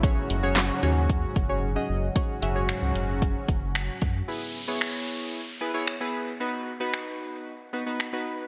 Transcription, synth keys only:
X:1
M:4/4
L:1/16
Q:1/4=113
K:F#mix
V:1 name="Synth keys"
[CFGc]2 z [CFGc]2 z [CFGc]4 z [CFGc]2 [CFGd]2 z | [CFGc]2 [CFGe] [CFGc]6 z6 z | [B,EGB]2 z [B,EGc]4- [B,EGc] z2 [B,EGB] [B,EGc]2 [B,EGB]2 z | [B,DFB]2 z [B,DFB]4- [B,DFB] z2 [B,DFB] [B,DFB]2 [B,DFB]2 z |]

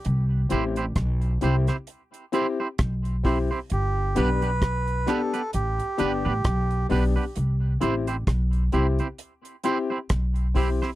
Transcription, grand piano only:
X:1
M:4/4
L:1/8
Q:"Swing 16ths" 1/4=66
K:Clyd
V:1 name="Grand piano"
z [CEG] z [CEG] z [CEG] z [CEG] | z [B,DG] z [B,DG] z [B,DG] z [B,DG] | z [CEG] z [CEG] z [CEG] z [CEG] |]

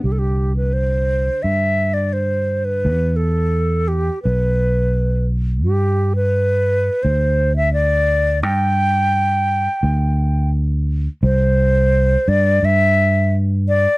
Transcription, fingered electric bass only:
X:1
M:4/4
L:1/8
Q:1/4=86
K:Clyd
V:1 name="Fingered electric bass" clef=bass
C,,4 G,,4 | E,,4 B,,,4 | G,,4 D,,4 | G,,4 D,,4 |
C,,3 G,, G,,4 |]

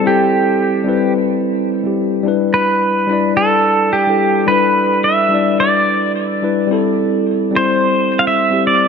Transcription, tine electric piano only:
X:1
M:4/4
L:1/16
Q:"Swing 16ths" 1/4=108
K:Am
V:1 name="Tine electric piano"
[G,CEA]6 [G,CEB]6- [G,CEB] [G,CEG]3 | [G,DEB]6 [G,DEd]6- [G,DEd] [G,DEA]3 | [G,DEB]6 [G,DEd]6- [G,DEd] z [G,DEB]2 | [G,CEA]6 [G,CEc]6- [G,CEc] [G,CEG]3 |]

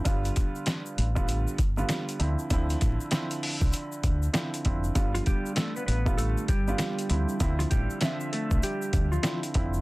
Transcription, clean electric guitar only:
X:1
M:4/4
L:1/16
Q:"Swing 16ths" 1/4=98
K:Ddor
V:1 name="Clean electric guitar"
z16 | z16 | z [F,F] [G,G]2 [A,A] [B,B] [B,B]2 [A,A]2 [G,G]6 | z [F,F] [G,G]2 [F,F]2 [A,A]2 [G,G]3 [F,F]2 z3 |]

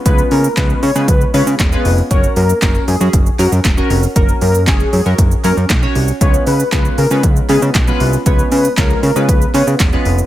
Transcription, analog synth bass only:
X:1
M:4/4
L:1/16
Q:1/4=117
K:F#
V:1 name="Analog synth bass" clef=bass
C,,2 C,2 C,,2 C, C, C,,2 C, C, =E,,,2 ^E,,,2 | F,,,2 F,,2 F,,,2 F,, F,, F,,,2 F,, F,, =E,,,2 ^E,,,2 | F,,,2 F,,2 F,,,2 F,, F,, F,,,2 F,, F,, B,,,2 ^B,,,2 | C,,2 C,2 C,,2 C, C, C,,2 C, C, B,,,2 ^B,,,2 |
C,,2 C,2 C,,2 C, C, C,,2 C, C, =E,,,2 ^E,,,2 |]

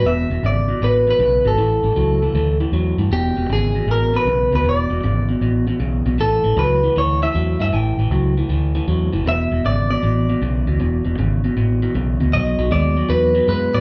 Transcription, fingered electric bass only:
X:1
M:4/4
L:1/8
Q:"Swing" 1/4=156
K:Emix
V:1 name="Fingered electric bass" clef=bass
E,,, E,,, G,,,2 A,,,2 B,,, G,,, | A,,, A,,, C,,2 D,,2 E,, =G,, | E,,, E,,, G,,,2 A,,,2 B,,, D,, | E,,, E,,, G,,,2 A,,,2 B,,, B,,, |
A,,, A,,, C,,2 D,,2 E,, =G,, | A,,, A,,, C,,2 D,,2 E,, F,,, | E,,, E,,, G,,,2 A,,,2 B,,, D,, | E,,, E,,, G,,,2 A,,,2 B,,, D,, |
B,,, B,,, ^D,,2 E,,2 F,, A,, |]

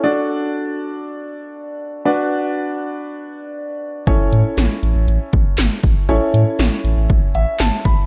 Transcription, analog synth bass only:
X:1
M:4/4
L:1/16
Q:1/4=119
K:A
V:1 name="Analog synth bass" clef=bass
z16 | z16 | A,,, z A,, z A,,, z A,,, A,,, A,,, z A,,, z G,,, z A,,, z | A,,, z A,, z A,,, z A,,, A,,, A,,, z A,,, z G,,, z A,,, z |]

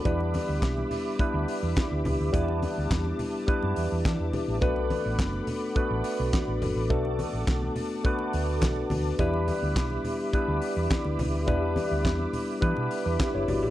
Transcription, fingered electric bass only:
X:1
M:4/4
L:1/16
Q:1/4=105
K:Edor
V:1 name="Fingered electric bass" clef=bass
E,,3 D,, B,,,2 z3 D,, z E,, z D,, C,, D,, | E,,3 D,, E,,2 z3 F,, E,, E,, E, E,, z A,,, | B,,,3 A,,, F,,,2 z3 A,,, z B,,, z A,,, G,,, A,,, | B,,,3 A,,, B,,,2 z4 D,,2 B,,,2 D,,2 |
E,,3 D,, B,,,2 z3 D,, z E,, z D,, C,, D,, | E,,3 D,, E,,2 z2 E, B,, z E,, z F,,, G,,, A,,, |]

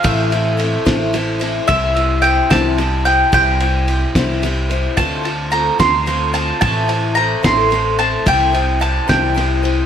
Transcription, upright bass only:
X:1
M:6/8
L:1/8
Q:3/8=73
K:Cmix
V:1 name="Upright bass" clef=bass
A,,,3 A,,,3 | C,,3 C,,3 | C,,3 C,,3 | D,,3 D,,3 |
A,,,3 A,,,3 | C,,3 C,,3 |]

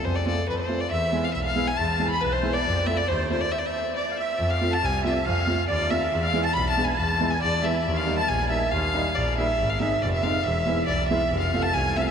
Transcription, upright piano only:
X:1
M:2/4
L:1/16
Q:1/4=139
K:none
V:1 name="Upright piano"
z2 [A,CF] z3 [A,CF] z | z2 [^G,B,E] z3 [G,B,E] z | z2 [^G,B,E] z3 [G,B,E] z | z2 [A,CF] z3 [A,CF] z |
z8 | z2 [A,CF] z3 [A,CF] z | z2 [A,CF] z3 [A,CF] z | z2 [^G,B,E] z3 [G,B,D] z |
z2 [^G,B,E] z3 [G,B,E] z | z2 [G,^A,^D] z3 [G,A,D] z | z2 [G,^A,^D] z3 [G,A,D] z | z2 [^G,^B,^D] z3 [G,B,D] z |
z2 [^G,B,E] z3 [G,B,E] z | z2 [A,CF] z3 [A,CF] z |]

